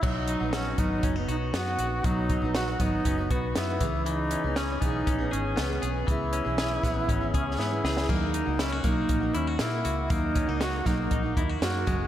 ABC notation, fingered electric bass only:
X:1
M:4/4
L:1/16
Q:1/4=119
K:B
V:1 name="Fingered electric bass" clef=bass
B,,,3 A,,,3 G,,,2 F,,,2 B,,,2 F,,2 A,,,2 | B,,,3 A,,,3 G,,,2 F,,,2 B,,,2 F,,2 C,,2- | C,,3 C,,3 B,,,2 A,,,2 G,,,2 C,,2 B,,,2 | C,,3 B,,,3 A,,,2 G,,,2 C,,2 G,,2 C,,2 |
D,,3 C,,3 B,,,2 A,,,2 D,,2 A,,2 C,,2 | D,,3 C,,3 B,,,2 A,,,2 D,,2 F,,2 F,,,2 |]